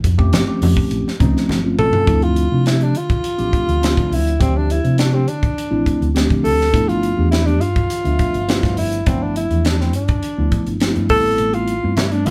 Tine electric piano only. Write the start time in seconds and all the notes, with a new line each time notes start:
0.18 F3 A3 C4 C#4 G4
0.47 F3 A3 C4 C#4 G4
1.20 F3 A3 C4 C#4 D#4
1.64 F3 A3 C4 C#4 F4
2.07 F3 A3 C4 D4 E4
2.51 F3 A3 C4 D4 E4
2.80 F3 A3 C4 D4 G4
2.94 D4 F4
3.38 F3 A3 C4 D4 G4
3.81 F3 A3 C4 D4 F4
4.39 F3 A3 C4 D4 G4
4.84 F3 A3 C4 D4 E4
5.13 F3 A3 C4 D4 G4
5.27 D4 E4
5.71 F3 A3 C4 D4 E4
6.15 F3 A3 C4 D4 G4
6.72 F3 A3 B3 D4 E4
7.16 F3 A3 B3 D4 G4
7.46 F3 A3 B3 D4 G4
7.60 D4 E4
8.04 F3 A3 B3 D4 E5
8.48 F3 A3 B3 D4 E4
9.06 F3 A3 B3 D4 E4
9.50 F3 A3 B3 D4 E4
9.79 F3 A3 B3 D4 E4
10.37 F3 A3 B3 D4 E4
10.81 F3 A3 B3 D4 E4
11.10 G3 A3 B3 C4 E4
11.83 G3 A3 B3 C4 E4
12.12 G3 A3 B3 C4 D4